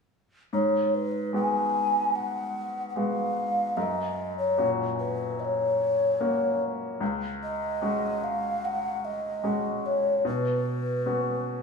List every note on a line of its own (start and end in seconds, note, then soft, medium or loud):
0.53 3.73 G#2 soft
0.53 0.96 C#5 medium
0.94 1.34 B4 medium
1.33 2.12 G#3 soft
1.33 2.12 B3 soft
1.33 2.12 F#4 soft
1.33 2.17 G#5 medium
2.15 2.89 F#5 medium
2.89 2.98 F#5 medium
2.96 3.74 G#3 soft
2.96 3.75 B3 soft
2.96 3.75 F#4 soft
2.96 3.79 F5 medium
3.77 6.97 F#2 soft
3.77 4.38 D#5 medium
4.38 4.69 C#5 medium
4.58 5.36 A#2 soft
4.58 5.36 C#4 soft
4.58 5.37 F#4 soft
4.99 5.41 B4 medium
5.40 5.46 D#5 medium
5.45 6.61 C#5 medium
6.20 6.99 A#3 soft
6.20 6.99 C#4 soft
6.20 6.99 F#4 soft
7.00 10.21 C#2 soft
7.43 8.25 D#5 medium
7.81 8.60 G#3 soft
7.81 8.61 C#4 soft
7.81 8.61 F#4 soft
8.24 8.67 F5 medium
8.65 9.06 F#5 medium
9.05 9.88 D#5 medium
9.44 10.22 G#3 soft
9.44 10.23 C#4 soft
9.44 10.23 F#4 soft
9.86 10.26 C#5 medium
10.25 11.62 B2 medium
10.25 11.62 B4 medium
11.06 11.62 B3 soft
11.06 11.62 C#4 soft
11.06 11.62 F#4 soft